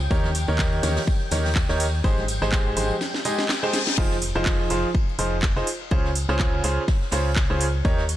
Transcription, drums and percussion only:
0.10 kick loud
0.10 ride medium
0.10 tambourine soft
0.24 snare medium
0.24 tambourine soft
0.24 high conga medium
0.35 open hi-hat loud
0.35 ride medium
0.35 tambourine medium
0.48 ride soft
0.48 tambourine soft
0.59 kick loud
0.59 snare loud
0.59 clap loud
0.59 open hi-hat medium
0.59 tambourine soft
0.73 tambourine soft
0.83 snare loud
0.83 open hi-hat medium
0.83 open hi-hat loud
0.83 tambourine medium
0.83 high conga medium
0.96 snare loud
0.96 open hi-hat medium
0.96 tambourine soft
1.07 kick loud
1.07 ride medium
1.07 tambourine medium
1.21 ride soft
1.21 tambourine soft
1.31 snare loud
1.31 open hi-hat loud
1.31 open hi-hat medium
1.31 tambourine medium
1.31 high conga medium
1.45 snare medium
1.45 open hi-hat medium
1.45 tambourine soft
1.55 kick loud
1.55 snare loud
1.55 clap loud
1.55 tambourine soft
1.69 snare medium
1.69 open hi-hat medium
1.69 tambourine soft
1.80 open hi-hat loud
1.80 ride medium
1.80 tambourine medium
1.93 tambourine soft
2.04 kick loud
2.04 ride medium
2.04 tambourine medium
2.18 snare soft
2.18 tambourine soft
2.18 high conga medium
2.28 open hi-hat loud
2.28 ride medium
2.28 tambourine medium
2.42 snare medium
2.42 tambourine soft
2.52 kick loud
2.52 snare loud
2.52 clap loud
2.52 ride medium
2.52 tambourine medium
2.66 tambourine soft
2.77 open hi-hat loud
2.77 ride medium
2.77 tambourine medium
2.77 high conga medium
2.91 tambourine soft
3.01 snare medium
3.01 ride medium
3.01 tambourine medium
3.14 snare medium
3.14 tambourine soft
3.25 open hi-hat loud
3.25 ride medium
3.25 tambourine medium
3.39 snare medium
3.39 ride soft
3.39 tambourine soft
3.49 snare loud
3.49 snare medium
3.49 clap loud
3.49 ride medium
3.49 tambourine soft
3.64 tambourine soft
3.73 snare loud
3.73 open hi-hat loud
3.73 ride medium
3.73 tambourine medium
3.87 snare medium
3.87 tambourine soft
3.97 kick loud
3.97 crash loud
3.97 ride medium
4.11 snare medium
4.22 open hi-hat loud
4.22 ride medium
4.35 ride soft
4.46 kick loud
4.46 snare loud
4.46 clap loud
4.46 open hi-hat medium
4.70 open hi-hat loud
4.70 ride medium
4.94 kick loud
4.94 ride medium
5.09 ride soft
5.19 open hi-hat loud
5.19 ride medium
5.42 kick loud
5.42 snare loud
5.42 clap loud
5.42 ride medium
5.57 snare soft
5.67 open hi-hat loud
5.67 ride medium
5.91 kick loud
5.91 ride loud
6.05 snare soft
6.15 open hi-hat loud
6.15 ride medium
6.29 snare medium
6.39 kick loud
6.39 snare loud
6.39 clap loud
6.39 ride medium
6.64 snare soft
6.64 open hi-hat loud
6.64 ride medium
6.88 kick loud
6.88 snare loud
6.88 open hi-hat medium
7.02 snare soft
7.11 snare loud
7.11 open hi-hat loud
7.11 open hi-hat medium
7.36 kick loud
7.36 snare loud
7.36 clap loud
7.36 ride medium
7.61 open hi-hat loud
7.61 ride medium
7.85 kick loud
7.85 ride medium
7.98 snare medium
8.09 open hi-hat loud
8.09 ride medium

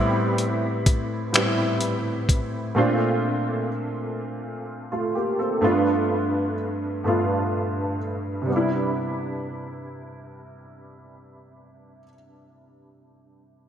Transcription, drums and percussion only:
0.38 closed hi-hat soft
0.86 kick medium
0.86 closed hi-hat medium
1.34 finger snap medium
1.34 closed hi-hat medium
1.81 closed hi-hat soft
2.29 kick medium
2.29 closed hi-hat soft

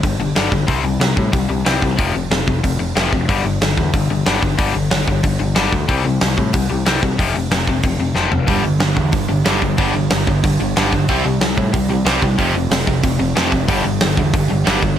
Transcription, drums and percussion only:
0.03 kick loud
0.03 open hi-hat medium
0.36 snare medium
0.36 open hi-hat medium
0.52 kick medium
0.68 kick loud
0.68 open hi-hat soft
1.01 snare loud
1.01 open hi-hat soft
1.17 kick medium
1.33 kick loud
1.33 open hi-hat medium
1.66 snare loud
1.66 open hi-hat medium
1.82 kick medium
1.99 kick loud
1.99 open hi-hat medium
2.31 snare loud
2.31 open hi-hat medium
2.48 kick medium
2.64 kick medium
2.64 open hi-hat medium
2.96 snare medium
2.96 open hi-hat soft
3.13 kick medium
3.29 kick medium
3.29 open hi-hat soft
3.61 snare loud
3.61 open hi-hat medium
3.77 kick medium
3.94 kick loud
3.94 open hi-hat medium
4.26 snare loud
4.26 open hi-hat medium
4.43 kick medium
4.58 kick loud
4.58 open hi-hat medium
4.91 snare loud
4.91 open hi-hat medium
5.08 kick medium
5.23 kick loud
5.23 open hi-hat medium
5.56 snare medium
5.56 open hi-hat soft
5.73 kick medium
5.89 kick loud
5.89 open hi-hat soft
6.21 snare loud
6.21 open hi-hat medium
6.38 kick medium
6.53 kick loud
6.53 open hi-hat medium
6.86 snare loud
6.86 open hi-hat medium
7.03 kick medium
7.19 kick loud
7.19 open hi-hat medium
7.51 snare loud
7.51 open hi-hat soft
7.67 kick medium
7.83 kick loud
7.83 open hi-hat soft
8.16 snare medium
8.32 floor tom medium
8.47 kick medium
8.47 open hi-hat soft
8.80 snare loud
8.80 open hi-hat soft
8.97 kick medium
9.12 kick loud
9.12 open hi-hat soft
9.45 snare loud
9.45 open hi-hat medium
9.62 kick medium
9.78 kick loud
9.78 open hi-hat medium
10.10 snare loud
10.10 open hi-hat medium
10.27 kick medium
10.44 kick loud
10.44 open hi-hat medium
10.77 snare loud
10.77 open hi-hat soft
10.93 kick medium
11.08 kick loud
11.08 open hi-hat soft
11.41 snare loud
11.41 open hi-hat soft
11.58 kick medium
11.74 kick loud
11.74 open hi-hat soft
12.06 snare loud
12.06 open hi-hat medium
12.22 kick medium
12.38 kick medium
12.38 open hi-hat soft
12.71 snare loud
12.71 open hi-hat medium
12.87 kick medium
13.03 kick loud
13.03 open hi-hat medium
13.36 snare loud
13.36 open hi-hat medium
13.52 kick medium
13.68 kick medium
13.68 open hi-hat medium
14.01 snare loud
14.01 open hi-hat medium
14.17 kick medium
14.34 kick loud
14.34 open hi-hat medium
14.67 snare loud
14.67 open hi-hat medium
14.83 kick medium

